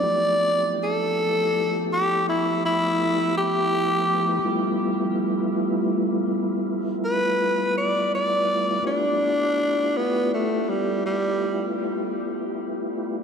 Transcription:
Already playing: tenor saxophone D5
0.03 tonewheel organ F3 A3 B3 E4 G4
0.84 tenor saxophone A4
1.93 tenor saxophone G4
2.29 tenor saxophone E4
2.65 tenor saxophone E4
3.38 tenor saxophone G4
4.45 tonewheel organ G3 A3 B3 E4 F4
7.05 tenor saxophone B4
7.78 tenor saxophone D5
8.15 tenor saxophone D5
8.83 tonewheel organ A3 B3 E4 F4 G4
8.87 tenor saxophone D4
9.97 tenor saxophone B3
10.34 tenor saxophone A3
10.70 tenor saxophone G3
11.06 tenor saxophone G3

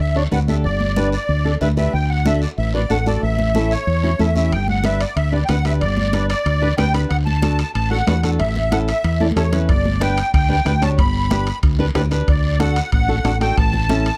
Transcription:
0.00 fingered electric bass D2, accordion E5, high conga, long guiro
0.16 nylon-string guitar D4 G4 C#5, accordion D5
0.31 fingered electric bass D2, nylon-string guitar D4 G4 B4, accordion F#5, high conga, short guiro
0.48 nylon-string guitar D4 G4 A4, accordion E5, high conga, short guiro
0.64 fingered electric bass G1, accordion D5, high conga, long guiro
0.80 high conga
0.96 nylon-string guitar D4 G4 B4, high conga, short guiro
1.12 accordion D5, short guiro
1.29 fingered electric bass D2, high conga, long guiro
1.45 nylon-string guitar D4 G4 A4
1.61 fingered electric bass D2, nylon-string guitar D4 G4 B4, accordion E5, high conga, short guiro
1.76 nylon-string guitar D4 G4 B4, accordion E5, high conga, short guiro
1.93 fingered electric bass D2, accordion G5, high conga, long guiro
2.10 accordion F#5
2.25 nylon-string guitar D4 F#4 A4, accordion E5, high conga, short guiro
2.42 accordion D5, short guiro
2.58 fingered electric bass A1, accordion E5, high conga, long guiro
2.74 nylon-string guitar D4 F#4 B4, accordion D5
2.90 fingered electric bass A1, nylon-string guitar D4 F#4 A4, accordion F#5, high conga, short guiro
3.06 nylon-string guitar D4 F#4 A4, accordion D5, high conga, short guiro
3.22 fingered electric bass A1, accordion E5, high conga, long guiro
3.39 high conga
3.55 nylon-string guitar C#4 E4 A4, high conga, short guiro
3.71 accordion C#5, short guiro
3.87 fingered electric bass E2, high conga, long guiro
4.03 nylon-string guitar C#4 E4 F#4
4.19 fingered electric bass E2, nylon-string guitar C#4 E4 A4, accordion E5, high conga, short guiro
4.35 nylon-string guitar C#4 E4 G4, accordion E5, high conga, short guiro
4.52 fingered electric bass G1, accordion G5, high conga, high timbale, long guiro
4.68 accordion F#5, high conga
4.84 nylon-string guitar D4 G4 B4, accordion E5, high conga, high timbale, short guiro
5.01 accordion D5, high timbale, short guiro
5.16 fingered electric bass D2, accordion E5, high conga, high timbale, long guiro
5.32 nylon-string guitar D4 G4 B4, accordion D5
5.45 fingered electric bass D2, nylon-string guitar D4 G4, accordion G5, high conga, high timbale, short guiro
5.49 nylon-string guitar B4, accordion F#5
5.65 nylon-string guitar D4 G4 B4, accordion E5, high timbale, short guiro
5.81 fingered electric bass G1, accordion D5, high conga, high timbale, long guiro
5.97 high conga
6.13 nylon-string guitar D4 G4 B4, high conga, high timbale, short guiro
6.30 accordion D5, high timbale, short guiro
6.46 fingered electric bass D2, high conga, high timbale, long guiro
6.62 nylon-string guitar D4 G4 B4
6.78 fingered electric bass D2, nylon-string guitar D4 G4 B4, accordion G5, high conga, high timbale, low timbale, short guiro
6.94 nylon-string guitar D4 G4 B4, accordion B5, high timbale, short guiro
7.09 fingered electric bass D2, accordion F#5, high conga, high timbale, long guiro
7.26 accordion A5, high conga
7.42 nylon-string guitar D4 F#4 A4, high conga, high timbale, short guiro
7.59 high timbale, short guiro
7.75 fingered electric bass A1, accordion A5, high conga, high timbale, long guiro
7.90 nylon-string guitar D4 F#4 A4, accordion F#5
8.07 fingered electric bass E2, nylon-string guitar D4 F#4 B4, high conga, high timbale, low timbale, short guiro
8.23 nylon-string guitar D4 F#4 A4, accordion F#5, high conga, high timbale, short guiro
8.39 fingered electric bass A1, accordion E5, high conga, high timbale, long guiro
8.56 high conga
8.71 nylon-string guitar C#4 E4 A4, accordion F#5, high conga, high timbale, short guiro
8.87 accordion E5, high timbale, short guiro
9.04 fingered electric bass E2, high conga, high timbale, long guiro
9.20 nylon-string guitar C#4 E4 A4, accordion D5, high conga
9.31 high conga
9.36 fingered electric bass E2, nylon-string guitar C#4 E4 A4, accordion C#5, high timbale, low timbale, short guiro
9.52 nylon-string guitar C#4 E4 B4, low conga, high timbale, short guiro
9.69 fingered electric bass G1, accordion D5, bombo low, high conga, high timbale, long guiro
9.85 high conga
10.00 nylon-string guitar D4 G4 B4, accordion G5, bombo rim, high conga, high timbale, short guiro
10.17 high timbale, short guiro
10.33 fingered electric bass D2, accordion G5, bombo low, high conga, high timbale, long guiro
10.49 nylon-string guitar D4 G4 B4
10.65 fingered electric bass D2, nylon-string guitar D4 G4 B4, bombo rim, high conga, high timbale, short guiro
10.82 nylon-string guitar D4 G4 C#5, accordion A5, high conga, high timbale, short guiro
10.98 fingered electric bass G1, accordion B5, bombo low, high conga, high timbale, long guiro
11.30 nylon-string guitar D4 G4 B4, bombo rim, high conga, high timbale, short guiro
11.47 high timbale, short guiro
11.63 fingered electric bass D2, bombo low, high conga, high timbale, long guiro
11.79 nylon-string guitar D4 G4 B4
11.95 fingered electric bass D2, nylon-string guitar D4 G4 B4, bombo rim, high conga, high timbale, low timbale, short guiro
12.11 nylon-string guitar D4 G4 B4, high timbale, short guiro
12.28 fingered electric bass D2, accordion D5, bombo low, high conga, high timbale, long guiro
12.60 nylon-string guitar D4 F#4 A4, accordion F#5, bombo rim, high conga, high timbale, short guiro
12.76 high timbale, short guiro
12.92 fingered electric bass A1, accordion F#5, bombo low, high conga, high timbale, long guiro
13.08 nylon-string guitar D4 F#4 A4
13.24 fingered electric bass A1, nylon-string guitar D4 F#4 A4, bombo rim, high conga, high timbale, short guiro
13.40 nylon-string guitar D4 F#4 A4, accordion G5, high timbale, short guiro
13.57 fingered electric bass A1, accordion A5, bombo low, high conga, high timbale, long guiro
13.74 high conga
13.89 nylon-string guitar C#4 E4 A4, bombo rim, high conga, high timbale, short guiro
14.06 high timbale, short guiro

